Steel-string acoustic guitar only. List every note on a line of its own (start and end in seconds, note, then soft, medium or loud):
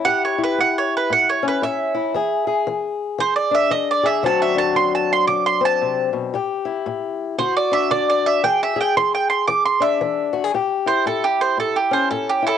0.00 0.38 E4 medium
0.05 0.53 A2 medium
0.05 2.12 G4 medium
0.38 1.93 E4 medium
0.58 1.06 A2 medium
1.10 1.58 A2 medium
1.43 2.13 C#4 medium
1.62 2.10 A2 medium
1.94 2.12 E4 medium
2.14 2.63 E3 medium
2.14 2.46 G#4 medium
2.47 4.02 G#4 medium
2.67 3.15 E3 medium
3.18 3.67 E3 medium
3.51 4.22 D4 medium
3.71 4.19 E3 medium
4.03 4.22 G#4 medium
4.23 4.71 D3 medium
4.23 6.31 F#3 medium
4.23 5.59 C4 medium
4.23 4.53 D4 medium
4.23 6.34 F#4 medium
4.55 6.31 D4 medium
4.75 5.24 D3 medium
5.28 5.76 D3 medium
5.61 6.31 C4 medium
5.81 6.12 C3 medium
6.13 6.33 B2 medium
6.33 6.82 A2 medium
6.33 7.36 G4 medium
6.65 7.36 E4 medium
6.86 7.34 A2 medium
7.38 7.87 D3 medium
7.38 8.44 F#4 medium
7.72 8.42 D4 medium
7.91 8.39 D3 medium
8.44 8.92 E3 medium
8.44 8.75 G#4 medium
8.76 10.33 G#4 medium
8.97 9.44 E3 medium
9.48 9.96 E3 medium
9.80 10.51 D4 medium
10.01 10.49 E3 medium
10.33 10.44 F#4 medium
10.44 10.54 G#4 medium
10.54 11.02 A2 medium
10.54 12.58 G4 medium
10.86 12.42 E4 medium
11.06 11.54 A2 medium
11.57 12.06 A2 medium
11.91 12.58 C#4 medium
12.11 12.58 A2 medium
12.42 12.58 E4 medium